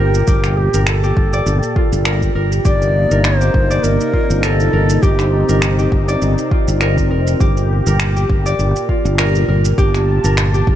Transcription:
Already playing: A#2 F4 G4 A#4 D5
0.00 G1 A#4
0.15 shaker
0.28 G1 G4, kick, shaker
0.44 finger snap, shaker
0.57 G4
0.74 G1 A#4, shaker
0.87 A4, finger snap, shaker
1.03 G4, shaker
1.17 G1, kick
1.33 D5, shaker
1.46 G1, shaker
1.63 shaker
1.76 F4, kick
1.92 G1, shaker
2.05 A#4, finger snap, shaker
2.22 kick, shaker
2.35 G1 A#4
2.52 shaker
2.65 G1 C3 A#3 D#4 G4 D5, kick, shaker
2.82 shaker
3.11 G1 A#4, shaker
3.24 C5, finger snap, shaker
3.41 G4, shaker
3.54 G1, kick
3.70 D5, shaker
3.83 G1 A#4, shaker
4.01 shaker
4.13 F4, kick
4.30 G1, shaker
4.43 A4 A#4, finger snap, shaker
4.60 shaker
4.73 G1 A#4
4.90 shaker
5.02 G1 C4 G4, kick, shaker
5.19 finger snap, shaker
5.49 G1 A#4, shaker
5.62 finger snap, shaker
5.79 G4, shaker
5.92 G1, kick
6.08 D5, shaker
6.22 G1, shaker
6.38 shaker
6.51 F4, kick
6.68 G1, shaker
6.81 A#4, finger snap, shaker
6.98 kick, shaker
7.11 F1 A#4
7.27 shaker
7.40 G1 A#2 G4, kick, shaker
7.57 shaker
7.87 G1 A#4, shaker
8.00 finger snap, shaker
8.16 G4, shaker
8.30 G1, kick
8.46 D5, shaker
8.59 G1, shaker
8.76 shaker
8.89 F4, kick
9.05 G1, shaker
9.18 A#4, finger snap, shaker
9.35 shaker
9.48 G1 A#4
9.65 shaker
9.77 G1 G4 A5, kick, shaker
9.94 finger snap, shaker
10.24 G1 A#4, shaker
10.37 finger snap, shaker
10.54 G4, shaker
10.67 G1, kick

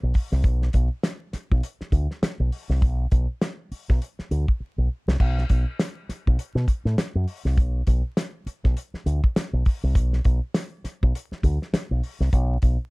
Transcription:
0.03 B1
0.14 kick, open hi-hat
0.32 C2, snare
0.44 B1, kick, closed hi-hat
0.62 snare
0.73 B1, kick, closed hi-hat
1.03 snare, closed hi-hat
1.33 muted fingered electric bass stroke, snare, closed hi-hat
1.52 B1, kick
1.63 closed hi-hat
1.81 muted fingered electric bass stroke, snare
1.92 D2, kick, closed hi-hat
2.11 snare
2.22 muted fingered electric bass stroke, snare, closed hi-hat
2.40 B1
2.52 open hi-hat
2.69 C2, snare
2.82 B1, kick, closed hi-hat
3.11 B1, kick, closed hi-hat
3.42 snare, closed hi-hat
3.71 muted fingered electric bass stroke, open hi-hat
3.89 B1, kick, snare
4.02 closed hi-hat
4.19 muted fingered electric bass stroke, snare
4.31 D2, closed hi-hat
4.48 kick
4.60 muted fingered electric bass stroke
4.78 B1
5.08 C2, snare
5.20 B1, kick, crash
5.38 snare
5.49 B1, kick, closed hi-hat
5.79 snare, closed hi-hat
6.09 muted fingered electric bass stroke, snare, closed hi-hat
6.27 B1, kick
6.38 muted fingered electric bass stroke, closed hi-hat
6.55 B2, snare
6.68 kick, closed hi-hat
6.85 A2, snare
6.97 muted fingered electric bass stroke, snare, closed hi-hat
7.15 F#2
7.28 open hi-hat
7.45 C2, snare
7.57 B1, kick, closed hi-hat
7.87 B1, kick, closed hi-hat
8.17 snare, closed hi-hat
8.46 muted fingered electric bass stroke, closed hi-hat
8.64 B1, kick, snare
8.77 closed hi-hat
8.94 muted fingered electric bass stroke, snare
9.06 D2, closed hi-hat
9.24 kick
9.36 muted fingered electric bass stroke, snare, closed hi-hat
9.53 B1
9.65 kick, open hi-hat
9.83 C2
9.95 B1, kick, closed hi-hat
10.13 snare
10.25 B1, kick, closed hi-hat
10.54 snare, closed hi-hat
10.84 muted fingered electric bass stroke, snare, closed hi-hat
11.03 B1, kick
11.15 closed hi-hat
11.31 muted fingered electric bass stroke, snare
11.43 D2, kick, closed hi-hat
11.62 snare
11.73 muted fingered electric bass stroke, snare, closed hi-hat
11.91 B1
12.03 open hi-hat
12.20 C2, snare
12.33 B1, kick, closed hi-hat
12.62 B1, kick, closed hi-hat

